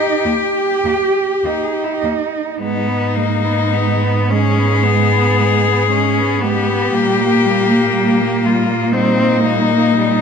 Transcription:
Already playing: D#4 G4
0.25 D#2 A#3 G4
0.84 D#2 A#3
1.44 D#2 A#3 D#4
1.63 G#4
1.74 G4
1.84 E4
1.94 G4
2.03 D#2 A#3
2.59 G#2 G#3 B3 D#4
2.88 B3
3.15 G#3 A#3
3.45 B3
3.73 G#3 B3
4.03 B3
4.30 G#3 C#4 G#4
4.59 B3
4.84 G#3 B3
5.11 B3
5.39 G#3
5.66 B3
5.91 G#3 C#4
6.18 B3
6.41 G#3 B3 G4
6.69 B3
6.93 A#2 G3 A#3
7.21 A#3
7.46 G3
7.71 A#3
7.97 G3
8.21 A#3
8.45 G3 F4
8.71 A#3
8.93 G3 C4 D#4
9.20 A#3
9.44 G3 A#3
9.71 A#3
9.96 G3

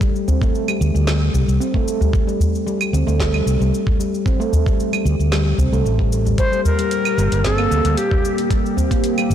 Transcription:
0.01 G3, kick, shaker
0.16 shaker
0.28 C4, udu, shaker
0.41 A3, kick, shaker
0.55 shaker
0.68 G3, claves, shaker
0.81 D2, shaker
0.95 D2 G3, shaker
1.07 snare, claves, shaker
1.34 C2 G3, udu, shaker
1.48 C2, shaker
1.60 C4, shaker
1.74 A3, kick
1.88 shaker
2.01 G3, udu, shaker
2.13 kick, shaker
2.27 G3, shaker
2.40 udu, shaker
2.55 shaker
2.67 G3, shaker
2.81 claves, shaker
2.93 D2 C4, shaker
3.07 D2 A3, shaker
3.20 kick, snare, shaker
3.34 G3, claves
3.46 C2, shaker
3.60 C2 G3, shaker
3.74 shaker
3.87 kick, udu
3.99 G3, shaker
4.14 shaker
4.26 C4, kick, shaker
4.40 A3, shaker
4.53 udu, shaker
4.66 G3, kick, shaker
4.80 shaker
4.93 G3, claves, shaker
5.05 D2, shaker
5.19 D2, shaker
5.32 G3, snare, claves, shaker
5.58 C2 C4, udu, shaker
5.72 C2 A3, shaker
5.85 A1, shaker
5.99 G3, kick
6.12 shaker
6.26 G3, udu, shaker
6.38 A#3 G4 C5, kick, closed hi-hat, shaker
6.52 G3, shaker
6.65 A#4, udu, shaker
6.79 G3, closed hi-hat, shaker
6.91 closed hi-hat, shaker
7.05 claves, shaker
7.18 G1 G3, shaker
7.32 G1, closed hi-hat, shaker
7.44 C4 G#4, kick, snare, closed hi-hat, shaker
7.55 A#3 A4, claves
7.71 D2, shaker
7.85 D2 G3, closed hi-hat, shaker
7.97 G4, closed hi-hat, shaker
8.11 G3, kick, udu
8.25 shaker
8.38 closed hi-hat, shaker
8.51 G3, kick, closed hi-hat, shaker
8.66 shaker
8.77 C4, udu, shaker
8.91 A#3, kick, closed hi-hat, shaker
9.04 closed hi-hat, shaker
9.18 G3, claves, shaker
9.30 G1, shaker

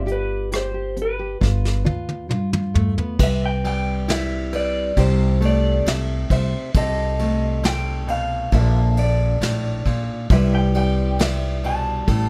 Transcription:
Already playing: G1 G3 F4 D5
0.06 C4 G4, closed hi-hat
0.12 B4
0.52 D3 G4, cross-stick, closed hi-hat
0.56 C5
0.74 G4
0.96 C4, closed hi-hat
1.02 B4
1.19 G4
1.41 G1 G3 F4, kick, snare
1.65 snare
1.85 D2 D4 F4, high tom
2.09 high tom
2.29 G2 D3 F4, mid tom
2.53 F4, mid tom
2.74 G2 A3, floor tom
2.98 B3, floor tom
3.19 C2 C3 B4, kick, crash
3.23 E5
3.46 G5
3.64 G3 G5, ride
4.08 E4 E5, snare, ride
4.53 B4 D5, ride
4.97 C2 C3 G4 C5, kick, ride
5.41 A3, ride
5.45 D5
5.86 C2 E5, snare, ride
6.30 C2 C5 E5, kick, ride
6.75 C2 C3 A4 D#5, kick, ride
7.19 A3, ride
7.63 C3 G5, snare, ride
8.07 B2 F5, ride
8.52 A#1 A#2 A#3 D4 F4 A4 E5, kick, ride
8.97 D5, ride
9.41 A#1 A2, snare, ride
9.85 A#1 A#2, kick, ride
10.30 C2 C3 G3 E4 G4 B4 E5, kick, ride
10.55 G5
10.74 G3 G5, ride
11.19 C3 E5, snare, ride
11.64 B2 A5, ride
12.07 A1 A2 A4, kick, ride

